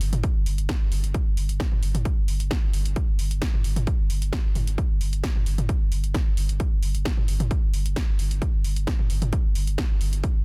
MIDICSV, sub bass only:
0, 0, Header, 1, 2, 480
1, 0, Start_track
1, 0, Tempo, 454545
1, 1209, Time_signature, 4, 2, 24, 8
1, 11030, End_track
2, 0, Start_track
2, 0, Title_t, "Sub bass"
2, 0, Program_c, 0, 38
2, 10, Note_on_c, 0, 31, 97
2, 130, Note_off_c, 0, 31, 0
2, 137, Note_on_c, 0, 31, 80
2, 247, Note_off_c, 0, 31, 0
2, 377, Note_on_c, 0, 31, 80
2, 483, Note_off_c, 0, 31, 0
2, 490, Note_on_c, 0, 31, 97
2, 610, Note_off_c, 0, 31, 0
2, 616, Note_on_c, 0, 31, 88
2, 727, Note_off_c, 0, 31, 0
2, 856, Note_on_c, 0, 31, 80
2, 963, Note_off_c, 0, 31, 0
2, 969, Note_on_c, 0, 31, 97
2, 1089, Note_off_c, 0, 31, 0
2, 1096, Note_on_c, 0, 31, 85
2, 1207, Note_off_c, 0, 31, 0
2, 1336, Note_on_c, 0, 31, 78
2, 1442, Note_off_c, 0, 31, 0
2, 1449, Note_on_c, 0, 31, 102
2, 1569, Note_off_c, 0, 31, 0
2, 1575, Note_on_c, 0, 31, 80
2, 1687, Note_off_c, 0, 31, 0
2, 1815, Note_on_c, 0, 31, 80
2, 1922, Note_off_c, 0, 31, 0
2, 1928, Note_on_c, 0, 31, 102
2, 2049, Note_off_c, 0, 31, 0
2, 2055, Note_on_c, 0, 31, 83
2, 2167, Note_off_c, 0, 31, 0
2, 2295, Note_on_c, 0, 31, 79
2, 2401, Note_off_c, 0, 31, 0
2, 2408, Note_on_c, 0, 31, 102
2, 2529, Note_off_c, 0, 31, 0
2, 2535, Note_on_c, 0, 31, 83
2, 2646, Note_off_c, 0, 31, 0
2, 2775, Note_on_c, 0, 31, 80
2, 2882, Note_off_c, 0, 31, 0
2, 2888, Note_on_c, 0, 31, 97
2, 3009, Note_off_c, 0, 31, 0
2, 3015, Note_on_c, 0, 31, 84
2, 3126, Note_off_c, 0, 31, 0
2, 3255, Note_on_c, 0, 31, 80
2, 3362, Note_off_c, 0, 31, 0
2, 3368, Note_on_c, 0, 31, 102
2, 3489, Note_off_c, 0, 31, 0
2, 3495, Note_on_c, 0, 31, 79
2, 3607, Note_off_c, 0, 31, 0
2, 3736, Note_on_c, 0, 31, 80
2, 3843, Note_off_c, 0, 31, 0
2, 3849, Note_on_c, 0, 31, 104
2, 3969, Note_off_c, 0, 31, 0
2, 3976, Note_on_c, 0, 31, 78
2, 4087, Note_off_c, 0, 31, 0
2, 4216, Note_on_c, 0, 31, 78
2, 4323, Note_off_c, 0, 31, 0
2, 4329, Note_on_c, 0, 31, 97
2, 4449, Note_off_c, 0, 31, 0
2, 4456, Note_on_c, 0, 31, 88
2, 4567, Note_off_c, 0, 31, 0
2, 4696, Note_on_c, 0, 31, 74
2, 4803, Note_off_c, 0, 31, 0
2, 4809, Note_on_c, 0, 31, 96
2, 4930, Note_off_c, 0, 31, 0
2, 4936, Note_on_c, 0, 31, 87
2, 5047, Note_off_c, 0, 31, 0
2, 5177, Note_on_c, 0, 31, 80
2, 5283, Note_off_c, 0, 31, 0
2, 5289, Note_on_c, 0, 31, 104
2, 5410, Note_off_c, 0, 31, 0
2, 5417, Note_on_c, 0, 31, 85
2, 5527, Note_off_c, 0, 31, 0
2, 5656, Note_on_c, 0, 31, 79
2, 5763, Note_off_c, 0, 31, 0
2, 5769, Note_on_c, 0, 31, 99
2, 5891, Note_off_c, 0, 31, 0
2, 5897, Note_on_c, 0, 31, 79
2, 6007, Note_off_c, 0, 31, 0
2, 6136, Note_on_c, 0, 31, 82
2, 6243, Note_off_c, 0, 31, 0
2, 6250, Note_on_c, 0, 31, 103
2, 6370, Note_off_c, 0, 31, 0
2, 6377, Note_on_c, 0, 31, 85
2, 6487, Note_off_c, 0, 31, 0
2, 6616, Note_on_c, 0, 31, 79
2, 6723, Note_off_c, 0, 31, 0
2, 6729, Note_on_c, 0, 31, 98
2, 6849, Note_off_c, 0, 31, 0
2, 6856, Note_on_c, 0, 31, 83
2, 6967, Note_off_c, 0, 31, 0
2, 7096, Note_on_c, 0, 31, 76
2, 7203, Note_off_c, 0, 31, 0
2, 7209, Note_on_c, 0, 31, 103
2, 7329, Note_off_c, 0, 31, 0
2, 7335, Note_on_c, 0, 31, 83
2, 7446, Note_off_c, 0, 31, 0
2, 7576, Note_on_c, 0, 31, 77
2, 7682, Note_off_c, 0, 31, 0
2, 7689, Note_on_c, 0, 31, 98
2, 7810, Note_off_c, 0, 31, 0
2, 7816, Note_on_c, 0, 31, 80
2, 7927, Note_off_c, 0, 31, 0
2, 8056, Note_on_c, 0, 31, 78
2, 8163, Note_off_c, 0, 31, 0
2, 8169, Note_on_c, 0, 31, 100
2, 8289, Note_off_c, 0, 31, 0
2, 8296, Note_on_c, 0, 31, 89
2, 8407, Note_off_c, 0, 31, 0
2, 8536, Note_on_c, 0, 31, 79
2, 8643, Note_off_c, 0, 31, 0
2, 8650, Note_on_c, 0, 31, 98
2, 8770, Note_off_c, 0, 31, 0
2, 8776, Note_on_c, 0, 31, 81
2, 8887, Note_off_c, 0, 31, 0
2, 9017, Note_on_c, 0, 31, 82
2, 9123, Note_off_c, 0, 31, 0
2, 9129, Note_on_c, 0, 31, 104
2, 9249, Note_off_c, 0, 31, 0
2, 9256, Note_on_c, 0, 31, 86
2, 9367, Note_off_c, 0, 31, 0
2, 9496, Note_on_c, 0, 31, 78
2, 9603, Note_off_c, 0, 31, 0
2, 9609, Note_on_c, 0, 31, 103
2, 9731, Note_off_c, 0, 31, 0
2, 9737, Note_on_c, 0, 31, 78
2, 9847, Note_off_c, 0, 31, 0
2, 9976, Note_on_c, 0, 31, 79
2, 10083, Note_off_c, 0, 31, 0
2, 10089, Note_on_c, 0, 31, 104
2, 10210, Note_off_c, 0, 31, 0
2, 10216, Note_on_c, 0, 31, 86
2, 10327, Note_off_c, 0, 31, 0
2, 10456, Note_on_c, 0, 31, 81
2, 10563, Note_off_c, 0, 31, 0
2, 10569, Note_on_c, 0, 31, 100
2, 10690, Note_off_c, 0, 31, 0
2, 10697, Note_on_c, 0, 31, 84
2, 10807, Note_off_c, 0, 31, 0
2, 10937, Note_on_c, 0, 31, 80
2, 11030, Note_off_c, 0, 31, 0
2, 11030, End_track
0, 0, End_of_file